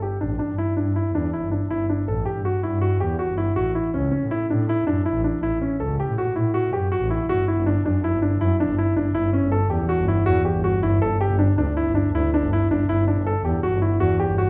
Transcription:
0.02 grand piano G4
0.21 double bass A1, grand piano D4
0.39 grand piano D4
0.50 double bass G2
0.58 grand piano E4
0.77 double bass G2, grand piano D4
0.96 grand piano E4
1.15 double bass E2, grand piano D4
1.33 grand piano E4
1.43 double bass G1
1.51 grand piano D4
1.70 double bass G1, grand piano E4
1.90 grand piano D4
2.08 double bass A1, grand piano A4
2.25 grand piano G4
2.37 double bass G2
2.45 grand piano F#4
2.63 double bass G2, grand piano E4
2.81 grand piano F#4
3.00 double bass E2, grand piano G4
3.19 grand piano F#4
3.30 double bass G1
3.38 grand piano E4
3.56 double bass A1, grand piano F#4
3.75 grand piano E4
3.94 double bass C#2, grand piano C#4
4.11 grand piano C#4
4.23 double bass A2
4.31 grand piano E4
4.50 double bass A2, grand piano D4
4.69 grand piano E4
4.87 double bass F#2, grand piano D4
5.06 grand piano E4
5.14 double bass A1
5.24 grand piano D4
5.43 double bass A1, grand piano E4
5.61 grand piano C#4
5.80 double bass C#2, grand piano A4
6.00 grand piano G4
6.09 double bass A2
6.18 grand piano F#4
6.36 double bass A2, grand piano E4
6.54 grand piano F#4
6.73 double bass F#2, grand piano G4
6.92 grand piano F#4
7.01 double bass A1
7.10 grand piano E4
7.29 double bass G1, grand piano F#4
7.48 grand piano E4
7.57 double bass G1
7.66 grand piano D4
7.85 double bass F#2, grand piano D4
8.04 grand piano E4
8.13 double bass G1
8.22 grand piano D4
8.41 double bass F#2, grand piano E4
8.60 grand piano D4
8.68 double bass G1
8.78 grand piano E4
8.96 double bass G1, grand piano D4
9.14 double bass G1, grand piano E4
9.33 grand piano C#4
9.43 double bass G1
9.52 grand piano A4
9.70 double bass E2, grand piano G4
9.89 grand piano F#4
10.00 double bass G1
10.08 grand piano E4
10.26 double bass E2, grand piano F#4
10.45 grand piano G4
10.56 double bass G1
10.64 grand piano F#4
10.83 double bass G1, grand piano E4
11.02 double bass G1, grand piano A4
11.21 grand piano G4
11.31 double bass G1
11.39 grand piano D4
11.58 double bass D2, grand piano D4
11.77 grand piano E4
11.87 double bass G1
11.95 grand piano D4
12.14 double bass D2, grand piano E4
12.34 grand piano D4
12.43 double bass G1
12.53 grand piano E4
12.70 double bass G1, grand piano D4
12.88 double bass G1, grand piano E4
13.08 grand piano D4
13.17 double bass G1
13.27 grand piano A4
13.44 double bass E2, grand piano G4
13.63 grand piano F#4
13.72 double bass G1
13.82 grand piano E4
14.00 double bass E2, grand piano F#4
14.20 grand piano G4
14.29 double bass G1
14.38 grand piano F#4

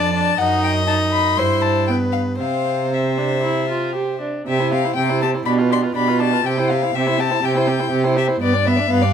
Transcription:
Already playing: cello F2, viola D4, violin D5 A5
0.14 viola D4, violin A5
0.38 cello F#2, viola D#4, violin D#5 F#5
0.63 violin G5
0.87 viola D#4, violin A5
1.12 violin B5
1.37 cello G2, viola E4, violin C5 C6
1.62 violin A5
1.88 viola B3, violin B4 G5
2.12 violin F5
2.39 cello C3, viola C4, violin C5 F5
2.92 viola C4, violin E5
3.18 viola D4
3.43 viola E4
3.69 viola F4
3.95 viola G4
4.21 viola D4
4.47 cello C3, viola C4, violin G4 E5
4.59 viola E4, violin C5
4.72 viola C4, violin G4 F5
4.84 viola E4, violin C5
4.96 cello C3, viola C4, violin G4 G5
5.09 viola E4, violin C5
5.21 viola C4, violin G4 A5
5.34 viola E4, violin C5
5.45 cello B2, viola D4, violin G4 B5
5.58 viola F4, violin B4
5.70 viola D4, violin G4 C6
5.83 viola F4, violin B4
5.95 cello B2, viola D4, violin G4 B5
6.08 viola F4, violin B4
6.20 viola D4, violin G4 A5
6.32 viola F4, violin B4
6.44 cello C3, viola C4, violin G4 G5
6.57 viola E4, violin C5
6.70 viola C4, violin G4 F5
6.82 viola E4, violin C5
6.94 cello C3, viola C4, violin G4 E5
7.07 viola E4, violin C5
7.18 viola C4, violin G4 A5
7.31 viola E4, violin C5
7.43 cello C3, viola C4, violin G4 G5
7.55 viola E4, violin C5
7.67 viola C4, violin G4
7.79 viola E4, violin C5
7.91 cello C3, viola C4, violin G4
8.04 viola E4, violin C5
8.16 viola C4, violin G4 E5
8.27 viola E4, violin C5
8.41 cello G2, viola B3, violin B4 D5
8.54 viola D4, violin D5
8.65 viola B3, violin B4 E5
8.76 viola D4, violin D5
8.89 cello G2, viola B3, violin B4 F5
9.02 viola D4, violin D5

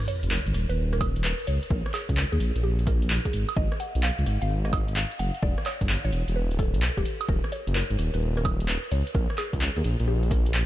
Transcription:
Already playing: sub drop
0.08 synth pluck C#5, open hi-hat
0.23 detuned saw bass F#1, closed hi-hat, shaker
0.31 synth pluck A#4, clap, shaker
0.46 detuned saw bass G#1, closed hi-hat, shaker
0.54 detuned saw bass D#1, cross-stick, open hi-hat
0.69 detuned saw bass D#1, synth pluck B4, closed hi-hat, shaker
0.78 shaker
0.93 synth pluck A#4, cross-stick, closed hi-hat, shaker
1.01 kick, open hi-hat, high woodblock
1.16 closed hi-hat, shaker
1.24 synth pluck B4, clap, shaker
1.39 closed hi-hat, shaker
1.47 detuned saw bass C#2, synth pluck C#5, open hi-hat
1.63 closed hi-hat, shaker
1.71 detuned saw bass A#1, synth pluck A#4, kick, shaker
1.86 cross-stick, shaker
1.94 synth pluck G#4, clap, open hi-hat, high woodblock
2.09 detuned saw bass C#2, kick, closed hi-hat, shaker
2.17 clap, shaker
2.32 detuned saw bass D#2, synth pluck G#4, closed hi-hat, shaker
2.40 detuned saw bass A#1, open hi-hat
2.56 detuned saw bass A#1, closed hi-hat, shaker
2.64 synth pluck G4, shaker
2.79 open hi-hat, shaker
2.87 synth pluck A#4, kick, cross-stick, open hi-hat
3.02 closed hi-hat, shaker
3.10 clap, shaker
3.25 synth pluck G#4, kick, closed hi-hat, shaker
3.33 detuned saw bass G#1, open hi-hat
3.49 closed hi-hat, high woodblock, shaker
3.57 detuned saw bass G#1, synth pluck D#5, kick, shaker
3.72 cross-stick, shaker
3.80 synth pluck F#5, open hi-hat
3.95 detuned saw bass B1, closed hi-hat, shaker
4.03 synth pluck F5, clap, shaker
4.18 detuned saw bass C#2, closed hi-hat, shaker
4.26 detuned saw bass G#1, cross-stick, open hi-hat
4.42 detuned saw bass G#1, synth pluck F5, closed hi-hat, shaker
4.50 shaker
4.65 synth pluck D#5, cross-stick, closed hi-hat, shaker
4.73 kick, open hi-hat, high woodblock
4.88 closed hi-hat, shaker
4.96 synth pluck F5, clap, shaker
5.11 closed hi-hat, shaker
5.19 detuned saw bass F#1, synth pluck F#5, open hi-hat
5.35 closed hi-hat, shaker
5.43 detuned saw bass E1, synth pluck D5, kick, shaker
5.58 cross-stick, shaker
5.66 synth pluck C#5, clap, open hi-hat, high woodblock
5.81 detuned saw bass G1, kick, closed hi-hat, shaker
5.89 clap, shaker
6.05 detuned saw bass A1, synth pluck C#5, closed hi-hat, shaker
6.12 detuned saw bass E1, open hi-hat
6.28 detuned saw bass E1, closed hi-hat, shaker
6.36 synth pluck B4, shaker
6.51 detuned saw bass D1, open hi-hat, shaker
6.59 synth pluck A4, kick, cross-stick, open hi-hat
6.74 detuned saw bass B1, closed hi-hat, shaker
6.82 clap, shaker
6.97 detuned saw bass D1, synth pluck G4, kick, closed hi-hat, shaker
7.05 open hi-hat
7.21 closed hi-hat, high woodblock, shaker
7.29 detuned saw bass D#1, synth pluck A#4, kick, shaker
7.44 cross-stick, shaker
7.52 synth pluck C#5, open hi-hat
7.67 detuned saw bass F#1, closed hi-hat, shaker
7.75 synth pluck A#4, clap, shaker
7.90 detuned saw bass G#1, closed hi-hat, shaker
7.98 detuned saw bass D#1, cross-stick, open hi-hat
8.14 detuned saw bass D#1, synth pluck B4, closed hi-hat, shaker
8.22 shaker
8.37 synth pluck A#4, cross-stick, closed hi-hat, shaker
8.45 kick, open hi-hat, high woodblock
8.60 closed hi-hat, shaker
8.68 synth pluck B4, clap, shaker
8.84 closed hi-hat, shaker
8.92 detuned saw bass C#2, synth pluck C#5, open hi-hat
9.07 closed hi-hat, shaker
9.15 detuned saw bass A#1, synth pluck A#4, kick, shaker
9.30 cross-stick, shaker
9.38 synth pluck G#4, clap, open hi-hat, high woodblock
9.53 detuned saw bass C#2, kick, closed hi-hat, shaker
9.61 clap, shaker
9.77 detuned saw bass D#2, synth pluck G#4, closed hi-hat, shaker
9.84 detuned saw bass A#1, open hi-hat
10.00 detuned saw bass A#1, closed hi-hat, shaker
10.08 synth pluck G4, shaker
10.23 open hi-hat, shaker
10.31 synth pluck A#4, kick, cross-stick, open hi-hat
10.46 closed hi-hat, shaker
10.54 clap, shaker

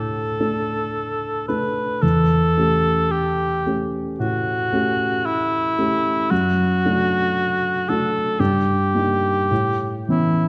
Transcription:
Already playing: grand piano A2 A3 D4 A4, cor anglais A4
0.40 grand piano A3 D4 A4
1.48 grand piano A3 D4 A4, cor anglais B4
2.02 grand piano E2, cor anglais A4
2.57 grand piano A3 C#4 G4
3.11 cor anglais G4
3.66 grand piano A3 C#4 G4
4.20 grand piano A2, cor anglais F#4
4.73 grand piano A3 C#4 G4
5.26 cor anglais E4
5.79 grand piano A3 C#4 G4
6.31 grand piano F#2, cor anglais F#4
6.85 grand piano A3 D4 F#4
7.88 grand piano A3 D4 F#4, cor anglais A4
8.40 grand piano G2, cor anglais G4
8.95 grand piano G3 A#3 D#4
9.51 grand piano A2
10.09 grand piano E3 B3 C#4, cor anglais E4

